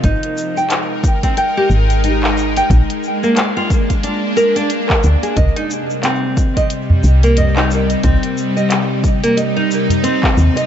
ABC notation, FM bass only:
X:1
M:4/4
L:1/8
Q:"Swing 16ths" 1/4=90
K:Cm
V:1 name="FM bass" clef=bass
A,,, z4 A,,,3 | B,,, z6 D,, | C,, z4 C,,3 | C,, z6 E,, |]